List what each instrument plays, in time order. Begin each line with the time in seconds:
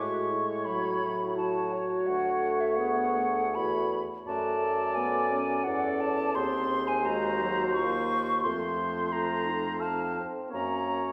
Already playing: bassoon A2, french horn G#3, clarinet F#4, oboe C#5, flute C#6
0.31 clarinet E4
0.65 french horn F#3, flute B5
1.03 french horn F#3
1.37 clarinet F#4, oboe C#5, flute A5
1.73 flute C#5
2.07 bassoon D2, french horn A3, flute F#5
2.61 flute E5
2.76 french horn B3, clarinet G#4, flute F#5
3.17 french horn A3
3.55 bassoon E2, clarinet F#4, flute B5
4.26 bassoon F#2, french horn A3, clarinet F#4, oboe D5, flute A5
4.60 clarinet A4
4.95 french horn B3, flute G#5
5.32 french horn C#4
5.64 bassoon E2, clarinet A4, oboe D5, flute F#5
6.01 flute A5
6.35 bassoon D#2, french horn C4, clarinet G#4, oboe C5, flute C6
6.88 flute G#5
7.05 french horn G#3, clarinet F#4, flute A#5
7.41 french horn F#3
7.74 french horn A#3, clarinet F4, flute C#6
8.44 bassoon F2, french horn A3, clarinet F4, oboe C5, flute C6
9.12 clarinet F4, flute A#5
9.46 clarinet D#4
9.80 french horn C4, oboe F5, flute A5
10.16 french horn C4
10.51 bassoon F#2, french horn A#3, clarinet C#4, oboe C#5, flute A#5